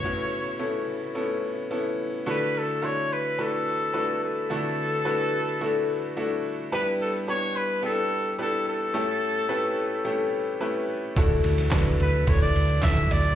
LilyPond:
<<
  \new Staff \with { instrumentName = "Trumpet" } { \time 4/4 \key d \major \tempo 4 = 108 cis''2. r4 | b'8 a'8 cis''8 b'8 a'4. a'8~ | a'2.~ a'8 r8 | b'8 a'8 cis''8 b'8 a'4 a'8 a'8~ |
a'2.~ a'8 r8 | r4. b'8 cis''16 d''8. e''8 d''8 | }
  \new Staff \with { instrumentName = "Upright piano" } { \time 4/4 \key d \major <b cis' e' fis'>4 <b cis' e' a'>4 <b cis' e' a'>4 <b cis' e' a'>4 | <a d' e' fis' a'>4 <a d' e' fis' a'>4 <a d' e' fis' b'>4 <a d' e' fis' b'>4 | <a d' e' fis' a'>4 <a d' e' fis' b'>4 <a d' e' fis' a'>4 <a d' e' fis' a'>4 | <b d' e' g' b'>4 <b d' e' g' b'>4 <b d' e' g' a'>4 <b d' e' g' b'>4 |
<a cis' e' g' a'>4 <a cis' e' g' b'>4 <a cis' e' g' a'>4 <a cis' e' g' b'>4 | <a d' e' fis' a'>4 <a d' e' fis' b'>4 <a d' e' fis' a'>4 <a d' e' fis' a'>4 | }
  \new Staff \with { instrumentName = "Upright piano" } { \clef bass \time 4/4 \key d \major a,4. r2 r8 | d4. r2 r8 | d4. r2 r8 | g,4. r2 r8 |
a,4. r2 r8 | d4. r2 r8 | }
  \new Staff \with { instrumentName = "String section" } { \time 4/4 \key d \major <cis a b e'>1 | r1 | r1 | r1 |
r1 | <d fis a e'>1 | }
  \new Staff \with { instrumentName = "Fingered electric bass" } { \clef bass \time 4/4 \key d \major r1 | r1 | r1 | r1 |
r1 | d,8 d,8 d,8 d,8 d,8 d,8 d,8 d,8 | }
  \new DrumStaff \with { instrumentName = "Drums" } \drummode { \time 4/4 r4 r4 r4 r4 | r4 r4 r4 r4 | r4 r4 r4 r4 | r4 r4 r4 r4 |
r4 r4 r4 r4 | <bd cymr>8 cymr16 <cymr sn>16 <hc bd cymr sn>8 cymr8 <bd cymr>8 cymr8 <hc bd cymr sn>16 tomfh16 <cymr tomfh>8 | }
>>